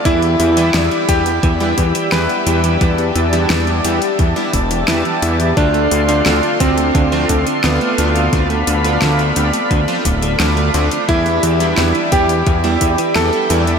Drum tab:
HH |xxxxxxxxxxxxxxxx|xxxxxxxxxxxxxxxx|xxxxxxxxxxxxxxxx|xxxxxxxxxxxxxxxx|
SD |----o-------o---|----o-------o---|----o-------o---|----o-------o---|
BD |o-----o-o-o-----|o-------o-o-----|o-----o-o-o-----|o-------o-o-----|

HH |xxxxxxxxxxxxxxxx|
SD |----o-------o---|
BD |o-----o-o-o-----|